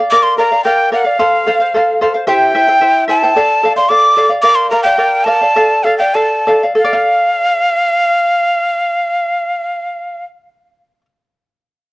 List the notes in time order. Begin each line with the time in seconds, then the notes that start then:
0.00 D5 F5
0.11 A#4 D5 F5 D6
0.23 C6
0.38 A#4 D5 F5 A#5
0.52 D5 F5
0.64 A#4 D5 F5 G5
0.92 A#4 D5 F5
1.04 D5 F5
1.19 A4 C5 F5
1.46 A4 C5 F5
1.60 C5 F5
1.74 A4 C5 F5
2.01 A4 C5 F5
2.14 C5 F5
2.27 E4 G4 C5 E5 G5
2.55 E4 C5 E5 G5
2.68 E4 C5 G5
2.81 E4 C5 E5 G5
3.08 E4 C5 E5 G5 A5
3.23 E4 C5 G5
3.36 A4 D5 F5
3.63 A4 D5 F5
3.76 D5 F5 C6
3.89 A4 D5 F5 D6
4.17 A4 D5 F5
4.30 D5 F5
4.42 A#4 D5 F5 D6
4.55 C6
4.71 A#4 D5 F5 A#5
4.83 D5 F5 G5
4.98 A#4 D5 F5
5.24 A#4 D5 F5 A5
5.41 D5 F5
5.56 A4 D5 F5
5.84 A4 D5 F5
5.98 D5 F5 G5
6.15 A4 D5 F5 A5
6.47 A4 D5 F5
6.63 D5 F5
6.75 A4 F5
6.84 D5
6.93 F5